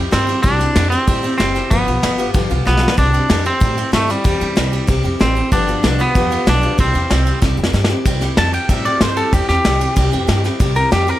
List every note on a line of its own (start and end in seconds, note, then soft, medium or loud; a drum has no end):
0.00 0.11 C4 medium
0.00 0.11 E4 medium
0.00 0.12 G4 medium
0.11 0.32 G2 loud
0.11 0.28 G3 medium
0.11 0.28 C4 medium
0.11 0.42 C4 medium
0.11 0.27 E4 medium
0.11 0.26 G4 medium
0.11 snare loud
0.11 ride medium
0.27 0.42 C4 soft
0.27 0.43 E4 medium
0.27 0.43 G4 medium
0.27 ride medium
0.43 0.64 C2 medium
0.43 0.59 C3 medium
0.43 0.60 G3 medium
0.43 0.60 C4 medium
0.43 0.90 D4 loud
0.43 0.59 E4 loud
0.43 0.58 G4 medium
0.43 kick loud
0.43 ride medium
0.59 0.75 C4 soft
0.59 0.76 E4 soft
0.59 0.75 G4 medium
0.59 snare soft
0.59 ride medium
0.75 0.95 F2 medium
0.75 0.92 G3 medium
0.75 0.92 C4 medium
0.75 0.92 E4 medium
0.75 0.90 G4 medium
0.75 snare loud
0.75 ride medium
0.90 1.35 C4 medium
0.90 1.07 C4 soft
0.90 1.07 E4 soft
0.90 1.07 G4 medium
0.90 ride medium
1.07 1.27 A2 medium
1.07 1.23 C3 medium
1.07 1.23 G3 medium
1.07 1.24 C4 medium
1.07 1.22 E4 medium
1.07 1.22 G4 medium
1.07 kick loud
1.07 ride loud
1.23 1.38 C4 medium
1.23 1.39 E4 medium
1.23 1.39 G4 medium
1.23 ride medium
1.38 1.59 F#1 loud
1.38 1.55 G3 medium
1.38 1.71 C4 medium
1.38 1.55 C4 medium
1.38 1.55 E4 medium
1.38 1.54 G4 medium
1.38 snare loud
1.38 ride medium
1.55 1.71 C4 soft
1.55 1.71 E4 medium
1.55 1.71 G4 medium
1.55 snare soft
1.55 ride medium
1.71 1.81 G1 loud
1.71 1.87 G2 medium
1.71 1.87 D3 medium
1.71 1.87 F3 medium
1.71 2.30 B3 medium
1.71 1.87 B3 medium
1.71 1.86 F4 medium
1.71 1.85 G4 loud
1.71 kick loud
1.71 ride medium
1.86 1.97 B1 medium
1.86 2.01 F3 soft
1.86 2.02 B3 soft
1.86 2.03 F4 medium
1.86 2.03 G4 medium
1.86 ride medium
2.02 2.22 G1 medium
2.02 2.18 F3 medium
2.02 2.19 B3 medium
2.02 2.18 F4 medium
2.02 2.17 G4 medium
2.02 snare loud
2.02 ride medium
2.18 2.34 F3 soft
2.18 2.34 B3 medium
2.18 2.34 F4 medium
2.18 2.34 G4 medium
2.18 ride medium
2.34 2.44 G1 loud
2.34 2.50 G2 loud
2.34 2.50 D3 medium
2.34 2.50 F3 loud
2.34 2.50 B3 loud
2.34 2.49 F4 loud
2.34 2.48 G4 loud
2.34 kick loud
2.34 ride medium
2.50 2.60 C2 medium
2.50 2.64 F3 medium
2.50 2.65 B3 soft
2.50 2.66 F4 medium
2.50 2.66 G4 medium
2.50 ride medium
2.65 2.86 B1 medium
2.65 2.82 F3 medium
2.65 2.81 B3 medium
2.65 2.98 B3 loud
2.65 2.81 F4 medium
2.65 2.80 G4 medium
2.65 snare medium
2.77 snare medium
2.82 2.97 F3 soft
2.82 2.98 B3 medium
2.82 2.98 F4 medium
2.82 2.97 G4 medium
2.88 snare loud
2.97 3.17 C2 medium
2.97 3.13 C3 medium
2.97 3.14 G3 medium
2.97 3.14 C4 medium
2.97 3.46 D4 loud
2.97 3.13 E4 medium
2.97 3.12 G4 medium
2.97 kick loud
2.97 ride medium
3.13 3.29 C4 soft
3.13 3.29 E4 soft
3.13 3.29 G4 medium
3.13 ride medium
3.29 3.49 F2 medium
3.29 3.45 G3 medium
3.29 3.46 C4 medium
3.29 3.45 E4 medium
3.29 3.44 G4 medium
3.29 snare loud
3.29 ride medium
3.45 3.90 C4 loud
3.45 3.60 C4 soft
3.45 3.60 E4 medium
3.45 3.61 G4 medium
3.45 ride medium
3.60 3.81 A2 loud
3.60 3.77 C3 medium
3.60 3.77 G3 medium
3.60 3.77 C4 loud
3.60 3.76 E4 medium
3.60 3.75 G4 loud
3.60 kick loud
3.60 ride medium
3.77 3.92 C4 soft
3.77 3.92 E4 medium
3.77 3.93 G4 soft
3.77 ride medium
3.92 4.12 G2 loud
3.92 4.08 G3 medium
3.92 4.11 A3 medium
3.92 4.08 C4 medium
3.92 4.08 E4 medium
3.92 4.06 G4 medium
3.92 snare loud
3.92 ride medium
4.08 4.89 G3 medium
4.08 4.24 C4 soft
4.08 4.24 E4 medium
4.08 4.24 G4 medium
4.08 snare soft
4.08 ride medium
4.24 4.35 E2 loud
4.24 4.40 C3 medium
4.24 4.40 G3 medium
4.24 4.41 C4 medium
4.24 4.40 E4 medium
4.24 4.39 G4 medium
4.24 kick loud
4.24 ride loud
4.40 4.51 E2 medium
4.40 4.55 C4 soft
4.40 4.56 E4 medium
4.40 4.56 G4 medium
4.40 ride medium
4.56 4.76 C2 medium
4.56 4.72 G3 medium
4.56 4.72 C4 medium
4.56 4.72 E4 medium
4.56 4.71 G4 medium
4.56 snare loud
4.56 ride medium
4.72 4.87 C4 soft
4.72 4.88 E4 medium
4.72 4.88 G4 medium
4.72 ride medium
4.87 4.98 C2 loud
4.87 5.04 C3 medium
4.87 5.04 G3 medium
4.87 5.04 C4 loud
4.87 5.03 E4 loud
4.87 5.02 G4 loud
4.87 kick loud
4.87 ride medium
5.03 5.14 F2 medium
5.03 5.19 C4 medium
5.03 5.19 E4 medium
5.03 5.20 G4 medium
5.03 ride medium
5.19 5.40 A1 loud
5.19 5.36 G3 medium
5.19 5.36 C4 medium
5.19 5.52 C4 medium
5.19 5.35 E4 medium
5.19 5.34 G4 medium
5.19 snare loud
5.19 ride medium
5.35 5.52 C4 soft
5.35 5.52 E4 medium
5.35 5.51 G4 medium
5.35 ride medium
5.52 5.71 G1 loud
5.52 5.68 G2 medium
5.52 5.68 D3 medium
5.52 5.68 F3 medium
5.52 5.67 B3 loud
5.52 6.01 D4 loud
5.52 5.67 F4 loud
5.52 5.66 G4 loud
5.52 kick loud
5.52 ride medium
5.67 5.82 F3 soft
5.67 5.82 B3 soft
5.67 5.83 F4 medium
5.67 5.83 G4 medium
5.67 ride medium
5.83 6.03 C2 medium
5.83 5.99 F3 medium
5.83 5.99 B3 medium
5.83 5.98 F4 medium
5.83 5.98 G4 medium
5.83 snare loud
5.83 ride medium
5.99 6.14 F3 soft
5.99 6.15 B3 soft
5.99 6.49 B3 medium
5.99 6.15 F4 medium
5.99 6.15 G4 medium
5.99 ride medium
6.15 6.35 E2 loud
6.15 6.31 G2 medium
6.15 6.31 D3 medium
6.15 6.31 F3 medium
6.15 6.30 B3 medium
6.15 6.30 F4 medium
6.15 6.29 G4 loud
6.15 kick loud
6.15 snare soft
6.15 ride medium
6.30 6.45 F3 soft
6.30 6.46 B3 soft
6.30 6.46 F4 medium
6.30 6.47 G4 medium
6.30 ride medium
6.46 6.66 B1 loud
6.46 6.62 F3 medium
6.46 6.62 B3 medium
6.46 6.80 D4 loud
6.46 6.62 F4 medium
6.46 6.60 G4 medium
6.46 snare loud
6.46 ride medium
6.62 6.78 F3 soft
6.62 6.78 B3 medium
6.62 6.79 F4 medium
6.62 6.78 G4 medium
6.62 ride medium
6.78 6.89 C2 medium
6.78 6.94 C3 medium
6.78 6.94 G3 medium
6.78 6.95 C4 medium
6.78 7.39 C4 medium
6.78 6.94 E4 medium
6.78 6.93 G4 medium
6.78 kick loud
6.78 ride loud
6.94 7.05 E2 medium
6.94 7.09 C4 soft
6.94 7.10 E4 medium
6.94 7.10 G4 medium
6.94 ride medium
7.10 7.30 C2 medium
7.10 7.26 G3 medium
7.10 7.27 C4 medium
7.10 7.25 E4 medium
7.10 7.24 G4 medium
7.10 snare loud
7.10 ride medium
7.26 7.41 C4 soft
7.26 7.42 E4 medium
7.26 7.42 G4 medium
7.26 ride medium
7.42 7.52 C2 medium
7.42 7.58 C3 loud
7.42 7.58 G3 medium
7.42 7.58 C4 medium
7.42 7.57 E4 loud
7.42 7.56 G4 loud
7.42 kick loud
7.42 snare medium
7.57 7.68 F2 medium
7.57 7.73 C4 soft
7.57 7.74 E4 medium
7.57 7.74 G4 medium
7.63 snare medium
7.73 7.93 G2 loud
7.73 7.90 G3 medium
7.73 7.90 C4 medium
7.73 7.89 E4 medium
7.73 7.88 G4 medium
7.73 snare medium
7.84 snare loud
7.89 8.05 C4 medium
7.89 8.05 E4 medium
7.89 8.06 G4 medium
8.05 8.25 C2 loud
8.05 8.22 C3 medium
8.05 8.22 G3 medium
8.05 8.22 C4 loud
8.05 8.21 E4 loud
8.05 8.20 G4 loud
8.05 kick loud
8.05 ride medium
8.21 8.37 C4 medium
8.21 8.37 E4 medium
8.21 8.37 G4 medium
8.21 snare soft
8.21 ride medium
8.37 8.57 F2 medium
8.37 8.53 G3 medium
8.37 8.54 C4 medium
8.37 8.52 G4 medium
8.37 8.53 A5 loud
8.37 snare loud
8.37 ride medium
8.53 8.69 C4 soft
8.53 8.69 E4 soft
8.53 8.69 G4 soft
8.53 8.69 G5 medium
8.53 ride medium
8.69 8.89 A2 medium
8.69 8.85 C3 medium
8.69 8.85 G3 medium
8.69 8.86 C4 medium
8.69 8.85 E4 loud
8.69 8.84 G4 medium
8.69 8.85 E5 medium
8.69 kick loud
8.69 ride medium
8.85 9.00 C4 soft
8.85 9.01 E4 soft
8.85 9.01 G4 medium
8.85 9.01 D5 medium
8.85 ride medium
9.01 9.20 G2 medium
9.01 9.17 G3 medium
9.01 9.17 C4 medium
9.01 9.16 E4 medium
9.01 9.15 G4 medium
9.01 9.17 C5 medium
9.01 snare loud
9.01 ride medium
9.16 9.33 C4 soft
9.16 9.33 E4 medium
9.16 9.33 G4 medium
9.16 9.33 A4 medium
9.16 ride medium
9.32 9.43 E2 medium
9.32 9.49 C3 medium
9.32 9.49 G3 medium
9.32 9.49 C4 medium
9.32 9.49 E4 medium
9.32 9.48 G4 loud
9.32 9.47 G4 medium
9.32 kick loud
9.32 ride medium
9.49 9.59 E2 medium
9.49 9.64 C4 soft
9.49 9.65 E4 soft
9.49 9.65 G4 medium
9.49 10.41 G4 loud
9.49 snare soft
9.49 ride medium
9.64 9.84 C2 medium
9.64 9.80 G3 medium
9.64 9.81 C4 medium
9.64 9.80 E4 medium
9.64 9.79 G4 medium
9.64 snare loud
9.64 ride medium
9.80 9.95 C4 soft
9.80 9.96 E4 soft
9.80 9.96 G4 medium
9.80 ride medium
9.96 10.06 C2 loud
9.96 10.12 C3 loud
9.96 10.12 G3 medium
9.96 10.12 C4 loud
9.96 10.12 E4 loud
9.96 10.10 G4 loud
9.96 kick loud
9.96 ride medium
10.11 10.23 F2 medium
10.11 10.27 C4 medium
10.11 10.28 E4 medium
10.11 10.28 G4 medium
10.11 ride medium
10.27 10.48 G2 medium
10.27 10.44 G3 medium
10.27 10.44 C4 medium
10.27 10.44 E4 medium
10.27 10.43 G4 medium
10.27 snare loud
10.27 ride medium
10.44 10.59 C4 medium
10.44 10.60 E4 medium
10.44 10.60 G4 medium
10.44 snare soft
10.44 ride medium
10.60 10.80 C2 medium
10.60 10.76 C3 medium
10.60 10.76 G3 medium
10.60 10.76 C4 loud
10.60 10.75 E4 medium
10.60 10.74 G4 medium
10.60 kick loud
10.60 ride medium
10.75 10.91 C4 soft
10.75 10.91 E4 soft
10.75 10.91 G4 medium
10.75 10.92 A#4 medium
10.75 ride medium
10.91 11.12 F2 medium
10.91 11.08 G3 medium
10.91 11.08 C4 medium
10.91 11.07 E4 medium
10.91 11.09 G4 medium
10.91 11.06 G4 medium
10.91 snare loud
10.91 ride medium
11.07 11.19 C4 soft
11.07 11.19 E4 soft
11.07 11.19 G4 medium
11.07 11.19 A#4 medium
11.07 ride medium